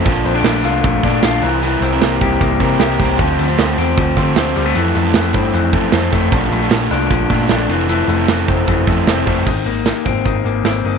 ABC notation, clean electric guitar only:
X:1
M:4/4
L:1/16
Q:1/4=153
K:F
V:1 name="Clean electric guitar"
F,2 C D A,2 F2 A,2 D2 F2 E,2 | E,2 C2 B,2 G2 B,2 C2 G2 C2 | F,2 A,2 F,2 C2 F,2 A,2 C2 G, A, | E,2 A,2 E,2 C2 E,2 A,2 C2 A,2 |
F,2 A,2 F,2 D2 F,2 A,2 D2 E,2 | E,2 A,2 E,2 C2 E,2 A,2 C2 A,2 | _E,2 B,2 E,2 C2 E,2 B,2 C2 E,2 |]